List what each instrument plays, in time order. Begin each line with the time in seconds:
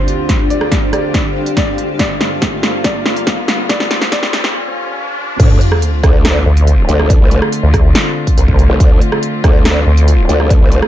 Already playing: string section D2 D3 C4 F4, ambient pad D4 G4 C5 F5, grand piano C5, riser
0.08 closed hi-hat
0.29 kick, snare, closed hi-hat
0.50 grand piano D5, closed hi-hat
0.61 cross-stick
0.72 kick, snare, closed hi-hat
0.93 grand piano D5, cross-stick, closed hi-hat
1.14 kick, snare, closed hi-hat
1.46 closed hi-hat
1.57 grand piano D5, kick, snare, closed hi-hat
1.78 closed hi-hat
1.99 string section G2 A#3 F4, grand piano D5, kick, snare, closed hi-hat
2.21 snare, closed hi-hat
2.42 kick, snare, closed hi-hat
2.63 snare, closed hi-hat
2.84 grand piano D5, kick, snare, closed hi-hat
3.06 snare
3.16 closed hi-hat
3.27 kick, snare, closed hi-hat
3.48 snare, closed hi-hat
3.69 grand piano D5, kick, snare, closed hi-hat
3.80 snare
3.91 snare, closed hi-hat
4.02 snare
4.12 grand piano D5, kick, snare, closed hi-hat
4.23 snare
4.33 snare, closed hi-hat
4.44 snare
5.40 wobble bass D2, string section D3 A3 C4 F4, kick, closed hi-hat, crash, sub drop
5.61 closed hi-hat
5.72 cross-stick
5.82 closed hi-hat
6.04 wobble bass D2, kick, cross-stick, closed hi-hat
6.25 cross-stick, snare, closed hi-hat
6.46 wobble bass D2
6.57 closed hi-hat
6.67 closed hi-hat
6.89 wobble bass D2, closed hi-hat
7.00 cross-stick
7.10 kick, closed hi-hat
7.21 wobble bass C2
7.31 closed hi-hat
7.42 cross-stick
7.52 closed hi-hat
7.63 wobble bass D2
7.74 kick, cross-stick, closed hi-hat
7.95 snare, closed hi-hat
8.27 kick, closed hi-hat
8.38 wobble bass C2, closed hi-hat
8.48 kick
8.59 closed hi-hat
8.70 wobble bass C2
8.80 wobble bass D2, kick, closed hi-hat
9.01 closed hi-hat
9.12 cross-stick
9.23 closed hi-hat
9.44 wobble bass D2, kick, cross-stick, closed hi-hat
9.65 cross-stick, snare, closed hi-hat
9.86 wobble bass D2
9.97 closed hi-hat
10.08 closed hi-hat
10.29 wobble bass D2, closed hi-hat
10.40 cross-stick
10.50 kick, closed hi-hat
10.61 wobble bass C2
10.72 closed hi-hat
10.82 cross-stick